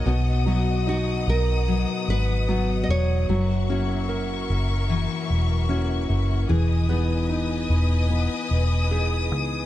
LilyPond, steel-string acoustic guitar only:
\new Staff \with { instrumentName = "Steel-string acoustic guitar" } { \time 4/4 \key b \major \tempo 4 = 74 <b, fis'>8 <b dis' fis'>8 dis'4 fis4 <b dis' fis'>4 | <fis, fis'>8 <ais e' fis'>8 e'4 e4 <ais e' fis'>4 | <e gis'>8 <b dis' gis'>8 dis'4 b4 <b dis' gis'>4 | }